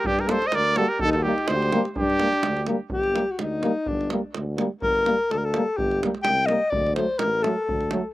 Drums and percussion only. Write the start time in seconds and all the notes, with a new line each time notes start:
0.05 davul low
0.19 davul high
0.29 davul high
0.42 davul high
0.52 davul high
0.65 davul high
0.76 davul high
1.00 davul low
1.13 davul high
1.38 davul high
1.48 davul high
1.62 davul high
1.72 davul high
1.85 davul high
1.96 davul low
2.10 davul high
2.20 davul high
2.33 davul high
2.43 davul high
2.57 davul high
2.67 davul high
2.90 davul low
3.03 davul high
3.16 davul high
3.39 davul high
3.63 davul high
3.86 davul low
4.01 davul high
4.10 davul high
4.34 davul high
4.58 davul high
4.82 davul low
4.95 davul high
5.06 davul high
5.31 davul high
5.54 davul high
5.79 davul low
5.91 davul high
6.03 davul high
6.15 davul high
6.25 davul high
6.48 davul high
6.72 davul low
6.86 davul high
6.96 davul high
7.19 davul high
7.44 davul high
7.69 davul low
7.81 davul high
7.91 davul high